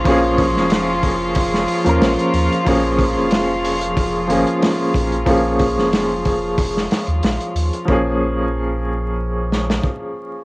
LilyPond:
<<
  \new Staff \with { instrumentName = "Upright piano" } { \time 4/4 \key bes \minor \tempo 4 = 92 <f bes des' aes'>2~ <f bes des' aes'>8 r16 <f bes des' bes'>4~ <f bes des' bes'>16 | <f bes des' aes'>2~ <f bes des' aes'>8 <f bes des' aes'>4. | <f bes des' aes'>2~ <f bes des' aes'>8 r4. | <f bes des' aes'>1 | }
  \new Staff \with { instrumentName = "String section" } { \time 4/4 \key bes \minor <f f'>1~ | <f f'>1~ | <f f'>1 | r1 | }
  \new Staff \with { instrumentName = "Sub bass" } { \clef bass \time 4/4 \key bes \minor bes,,8. f,,4.~ f,,16 r16 ees,16 bes,,16 r16 ees,16 r16 | bes,,8. f,,4.~ f,,16 aes,,16 r8. bes,,8 | bes,,8. f,,4.~ f,,16 r16 ees,16 bes,,16 r16 ees,16 r16 | bes,,2. r4 | }
  \new DrumStaff \with { instrumentName = "Drums" } \drummode { \time 4/4 <hho bd>8 <hho bd>16 sn16 <hho sn>8 <hho bd>8 <hho bd>16 sn16 hho16 hh16 <hho sn>16 hh16 hho16 hh16 | <hho bd>8 <hho bd>8 <hho sn>8 hho16 hh16 <hho bd>8 hho16 hh16 <hho sn>8 <hho bd>16 hh16 | <hho bd>8 <hho bd>16 sn16 <hho sn>8 <hho bd>8 <hho bd>16 sn16 <hho sn>16 hh16 <hho sn>16 hh16 hho16 hh16 | bd4 r4 r8 sn16 sn16 bd4 | }
>>